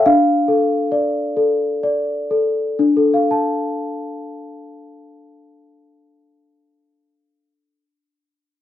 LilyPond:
\new Staff \with { instrumentName = "Celesta" } { \time 6/8 \key d \minor \tempo 4. = 41 << { f''4. r4. | <d' a' f'' a''>2.~ | <d' a' f'' a''>2. | } \\ { d'8 a'8 d''8 a'8 d''8 a'8 | r2. | r2. | } >> }